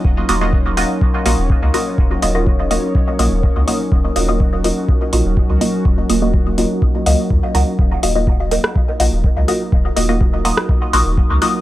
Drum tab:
HH |--o---o---o---o-|--o---o---o---o-|--o---o---o---o-|--o---o---o---o-|
SD |----------------|----------------|----------------|----------------|
BD |o---o---o---o---|o---o---o---o---|o---o---o---o---|o---o---o---o---|

HH |--o---o---o---o-|--o---o---o---o-|
SD |-------r--------|-------r--------|
BD |o---o---o---o---|o---o---o---o---|